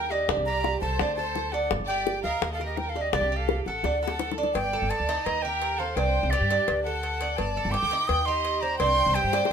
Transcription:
Already playing: upright bass D#2, cuban tres A#4, flute G5
0.10 cuban tres D4, violin section G4, flute D#5, high bongo
0.28 upright bass C2, cuban tres D4, high bongo
0.37 upright bass C2
0.46 cuban tres G4, violin section D5, flute A#5
0.64 high bongo
0.81 upright bass C2, cuban tres A4, violin section C5, flute A5, high bongo
0.99 upright bass D2, cuban tres D4, high bongo
1.16 cuban tres A4, violin section C5, flute A5, high bongo
1.35 high bongo, low bongo
1.52 cuban tres D4, violin section A4, flute F#5, high bongo
1.71 upright bass G1, high bongo
1.80 upright bass G1
1.87 cuban tres G4, violin section D5, flute G5
2.07 high bongo
2.23 upright bass D2, violin section A#4, cuban tres D#5, flute F5, high bongo
2.42 upright bass D#2, high bongo
2.53 violin section A4, flute F5
2.60 cuban tres A#4, high bongo
2.65 violin section G4, flute D#5
2.77 violin section A#4, flute G5, high bongo, low bongo
2.89 violin section A4, flute F5
2.95 cuban tres D4, high bongo
3.01 violin section G4, flute D#5
3.12 upright bass C2, cuban tres D4, violin section G4, flute D5, high bongo
3.21 upright bass C2
3.32 cuban tres G4
3.36 violin section A4, flute F5
3.49 high bongo
3.66 upright bass A1, violin section A4, cuban tres A4, flute F#5, high bongo
3.83 upright bass D2, cuban tres D4, high bongo
4.02 violin section A4, cuban tres A4, flute F#5
4.08 high bongo
4.19 low bongo
4.32 low bongo
4.38 cuban tres D4
4.43 low bongo
4.54 upright bass G1, violin section D5, flute G5, cowbell
4.73 cuban tres A4
4.82 upright bass G1
4.90 violin section D5, flute A5, cowbell
5.00 upright bass D2
5.09 cuban tres D#4, cowbell
5.25 upright bass D#2, violin section D#5, flute A#5, cowbell
5.42 cuban tres G4, violin section A#4, flute G5
5.62 cowbell
5.78 violin section A4, cuban tres C5, flute F5
5.95 upright bass C2, cuban tres D4, violin section C5, flute G5, cowbell
6.23 upright bass C2
6.30 violin section G4, cuban tres G4, flute D5, cowbell
6.41 upright bass G2
6.50 cuban tres D4, cowbell
6.68 upright bass D2, cowbell
6.83 violin section A4, cuban tres A4, flute F#5
7.03 cowbell
7.21 cuban tres D5, cowbell
7.37 upright bass G1, violin section D5, flute A5, cowbell
7.57 cuban tres A4
7.65 upright bass G1
7.72 violin section G5, flute D6, cowbell
7.83 upright bass D2
7.91 cuban tres D#4, cowbell
8.08 upright bass D#2, violin section G5, flute D#6, cowbell
8.26 cuban tres G4, violin section D#5, flute C6
8.45 cowbell
8.61 cuban tres C5, violin section D5, flute A#5
8.79 upright bass C2, cuban tres D4, violin section G5, flute C6, cowbell
9.06 upright bass C2
9.14 cuban tres G4, violin section C5, flute G5, cowbell
9.24 upright bass G2
9.33 cuban tres D4, cowbell, high bongo
9.45 high bongo

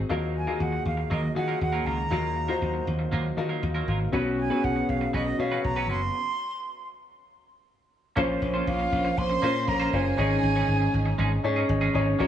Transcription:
Already playing: grand piano C4 D#4 F#4 G#4
0.09 slap bass D#2, analog synth pad D#3 F#3 A#3 F5, clean electric guitar F#3 A#3 F4 A#4, grand piano D#4 F4 F#4 A#4
0.35 flute G#5, muted clean electric guitar stroke
0.47 clean electric guitar F#3 A#3 F4 A#4, grand piano D#4 F4 F#4 G#4
0.60 slap bass D#2, flute F#5, muted clean electric guitar stroke
0.72 muted clean electric guitar stroke
0.85 slap bass D#2, flute F5
0.97 muted clean electric guitar stroke
1.10 slap bass D#2, clean electric guitar F#3 A#3 F4 A#4, flute D#5
1.23 muted clean electric guitar stroke
1.35 slap bass D#3, grand piano D#4 F4 F#4 G#4, flute F#5, muted clean electric guitar stroke
1.48 clean electric guitar F#3 A#3 F4 A#4
1.61 slap bass D#2, flute F#5, muted clean electric guitar stroke
1.73 clean electric guitar F#3 A#3 F4 A#4
1.86 slap bass C#2, clean electric guitar F#3 A#3 F4 A#4, flute A#5
1.98 muted clean electric guitar stroke
2.11 slap bass D#2, clean electric guitar F#3 A#3 F4 A#4, grand piano D#4 F4 F#4 A#4
2.36 muted clean electric guitar stroke
2.48 clean electric guitar F#3 A#3 F4 A#4, grand piano D#4 F4 F#4 C5
2.61 slap bass D#2, muted clean electric guitar stroke
2.74 muted clean electric guitar stroke
2.87 slap bass D#2
2.99 muted clean electric guitar stroke
3.12 slap bass D#2, clean electric guitar F#3 A#3 F4 A#4
3.25 muted clean electric guitar stroke
3.37 slap bass D#3, grand piano D#4 F4 F#4 A#4, muted clean electric guitar stroke
3.49 clean electric guitar F#3 A#3 F4 A#4
3.62 slap bass D#2, muted clean electric guitar stroke
3.74 clean electric guitar F#3 A#3 F4 A#4
3.87 slap bass G#1, clean electric guitar F#3 A#3 F4 A#4
4.00 muted clean electric guitar stroke
4.12 slap bass B1, clean electric guitar F#3 C#4 F#4 B4, grand piano B3 C#4 F#4 B4, analog synth pad B3 C#4 F#4
4.38 flute G#5, muted clean electric guitar stroke
4.50 clean electric guitar F#3 C#4 F#4 B4, grand piano B3 C#4 F#4 G#4
4.63 slap bass B1, flute F#5, muted clean electric guitar stroke
4.76 muted clean electric guitar stroke
4.89 slap bass B1, flute F5
5.01 muted clean electric guitar stroke
5.13 slap bass B1, clean electric guitar F#3 C#4 F#4 B4, flute D#5
5.26 muted clean electric guitar stroke
5.39 slap bass B2, grand piano B3 C#4 F#4 C#5, flute F5, muted clean electric guitar stroke
5.51 clean electric guitar F#3 C#4 F#4 B4
5.64 slap bass B1, flute A#5, muted clean electric guitar stroke
5.76 clean electric guitar F#3 C#4 F#4 B4
5.89 slap bass F#1, clean electric guitar F#3 C#4 F#4 B4, flute C6
6.02 muted clean electric guitar stroke
8.16 slap bass A#1, clean electric guitar A#3 C#4 F4 C5, analog synth pad A#3 C#4 C5, grand piano C#4 F4 A#4 C5
8.42 slap bass A#1
8.54 clean electric guitar A#3 C#4 F4 C5
8.67 slap bass A#1, violin section F4, flute F5, muted clean electric guitar stroke
8.79 muted clean electric guitar stroke
8.92 slap bass A#1
9.05 muted clean electric guitar stroke
9.18 slap bass A#1, violin section C5, flute C6
9.30 muted clean electric guitar stroke
9.42 slap bass A#2, clean electric guitar A#3 C#4 F4 C5, grand piano C#4 F4 A#4 C5
9.55 muted clean electric guitar stroke
9.67 slap bass A#1, violin section A#4, flute A#5, muted clean electric guitar stroke
9.80 clean electric guitar A#3 C#4 F4 C5
9.92 slap bass F#1, clean electric guitar A#3 C#4 F4 C5, grand piano C#4 F4 A#4 C5, violin section G#4, flute G#5
10.05 muted clean electric guitar stroke
10.17 slap bass G#1, clean electric guitar G#3 C#4 D#4 G#4, analog synth pad G#3 C#4 D#4, grand piano C#4 D#4 G#4 C#5
10.43 slap bass G#1, muted clean electric guitar stroke
10.55 clean electric guitar G#3 C#4 D#4 G#4
10.68 slap bass G#1, muted clean electric guitar stroke
10.80 muted clean electric guitar stroke
10.94 slap bass G#1
11.06 muted clean electric guitar stroke
11.18 slap bass G#1, clean electric guitar G#3 C#4 D#4 G#4
11.31 muted clean electric guitar stroke
11.44 slap bass G#2, grand piano C#4 D#4 G#4 C#5, muted clean electric guitar stroke
11.56 clean electric guitar G#3 C#4 D#4 G#4
11.69 slap bass G#1, grand piano D#5, muted clean electric guitar stroke
11.81 clean electric guitar G#3 C#4 D#4 G#4
11.94 slap bass G#1, clean electric guitar G#3 C#4 D#4 G#4, grand piano C#4 D#4 G#4 C#5 G#5
12.06 muted clean electric guitar stroke
12.19 slap bass A#1, analog synth pad F#3 A#3, clean electric guitar A#3 C#4 F#4 A#4, grand piano C#4 F#4 A#4 C#5

